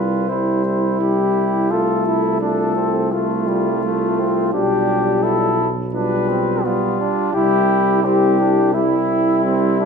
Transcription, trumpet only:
Already playing: B4
0.29 C5
1.01 G4
1.71 A4
2.41 A4
3.12 F4
4.53 G4
5.23 A4
5.95 B4
6.64 F4
7.33 G4
8.03 G4
8.73 E4

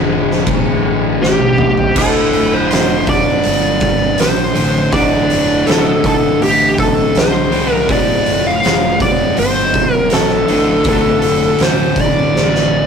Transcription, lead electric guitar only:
1.22 G4
1.98 A4
2.53 C5
3.09 D5
4.20 C5
4.93 D5
5.67 A4
6.07 A4
6.43 G4
6.80 A4
7.18 C5
7.73 A#4
7.92 D5
8.47 F5
9.02 D5
9.39 C5
9.95 A#4
10.13 A4
10.89 A4
11.63 C5
12.01 D5

